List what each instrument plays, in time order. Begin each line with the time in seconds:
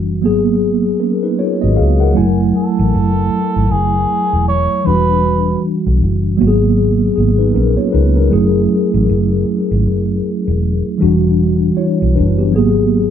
Already playing: fingered electric bass F#1, tine electric piano E3 G3 D4 F#4
0.22 fingered electric bass G#1, tine electric piano F#3 A#3 B3 G#4
1.00 tine electric piano C#4 A#4
1.23 tine electric piano D#4 B4
1.39 tine electric piano F4 C#5
1.61 fingered electric bass G#1, tine electric piano F#4 D#5
1.77 fingered electric bass C#2, tine electric piano G#4 F5
2.00 tine electric piano A#4 F#5
2.13 tine electric piano F#3 A3 E4 G#5
2.17 fingered electric bass F#1
2.56 muted trumpet A4
2.79 fingered electric bass A1
2.94 fingered electric bass F#1
3.56 fingered electric bass G#1
3.71 fingered electric bass F#1, muted trumpet G#4
4.33 fingered electric bass E1
4.48 muted trumpet C#5
4.83 fingered electric bass E1, tine electric piano E3 G3 D4, muted trumpet B4
4.88 tine electric piano F#4
5.87 fingered electric bass B1
6.02 fingered electric bass F#1
6.37 fingered electric bass G#1, tine electric piano F#3 A#3 B3 F#4
6.47 tine electric piano G#4
7.16 fingered electric bass G#1, tine electric piano B3 G#4
7.38 tine electric piano D#4 B4
7.54 fingered electric bass A#1, tine electric piano C#4 A#4
7.77 tine electric piano F4 C#5
7.92 fingered electric bass C#2, tine electric piano D#4 B4
8.16 tine electric piano C#4 A#4
8.29 fingered electric bass F#1, tine electric piano F#3 A3 E4 G#4
8.94 fingered electric bass A1
9.09 fingered electric bass F#1
9.71 fingered electric bass G#1
9.86 fingered electric bass F#1
10.48 fingered electric bass E1
10.98 tine electric piano E3 G3 D4
11.02 fingered electric bass E1, tine electric piano F#4
11.77 tine electric piano E4 C#5
12.02 fingered electric bass B1
12.15 fingered electric bass F#1, tine electric piano D4 B4
12.38 tine electric piano B3 G4
12.52 tine electric piano F#3 A#3 B3
12.56 fingered electric bass G#1, tine electric piano G#4